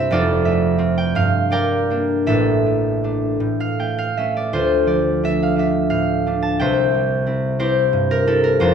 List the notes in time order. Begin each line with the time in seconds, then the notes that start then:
Already playing: C2 G2 G3 C4 E4 G4 C5 E5 G5
0.10 F1 F2 F4 A4 D5
0.45 A3 E5
0.78 C4 F4
0.98 G5
1.15 G2 F5
1.51 G3 A#4 D5 G5
1.90 A#3 D4
2.26 A1 A2 A4 E5
2.66 A3
3.04 A3 D4
3.40 A2
3.60 F5
3.79 A3 G5
3.98 F5
4.17 A3 C#4 E5
4.37 D5
4.53 D2 F4 A4 C5
4.87 F3 D5
5.23 A3 D4 E5
5.43 F5
5.56 A3 D4 E5
5.90 A2 F5
6.26 A3 D4
6.42 A5
6.59 C2 C5 E5 G5
6.94 G3
7.26 C4 E4
7.59 C4 E4 G4 C5
7.93 G2
8.11 A#4
8.27 C4 E4 A4
8.44 A#4
8.60 F1 F2 F4 A4 C5